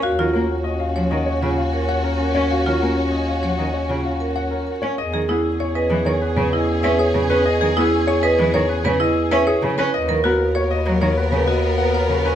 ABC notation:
X:1
M:4/4
L:1/16
Q:1/4=97
K:D#m
V:1 name="Grand piano"
e z A z d e z d c z e z f A z c | e z A z d e z d c z e z f A z c | [K:Elyd] d z G z c d z c B z d z e G z B | d z G z c d z c B z d z e G z B |
d z A z c d z c B z d z f A z B |]
V:2 name="Marimba"
F E z4 c z2 E z A c z A z | F E z4 c z2 E z A c z A z | [K:Elyd] z G E z c B z c z B E z B c z B | z G E z c B z c z B E z B c z B |
z A F z c z2 c z B F z B c z B |]
V:3 name="French horn"
C16- | C12- C3 z | [K:Elyd] G16- | G12- G3 z |
A16 |]
V:4 name="Violin section"
[CF]16- | [CF]12- [CF]3 z | [K:Elyd] [CG]16- | [CG]12- [CG]3 z |
[B,A]16 |]
V:5 name="Cello" clef=bass
z D, A, z3 E, D, z C, z4 z C | z D, A, z3 E, D, z C, z4 z C | [K:Elyd] z D, B, z3 E, D, z C, z2 C z C, C | z D, B, z3 E, D, z C, z2 C z C, C |
z D, B, z3 F, D, z C, z4 C, C |]
V:6 name="Bass clarinet" clef=bass
D,,16- | D,,16 | [K:Elyd] E,,16- | E,,16 |
D,,16 |]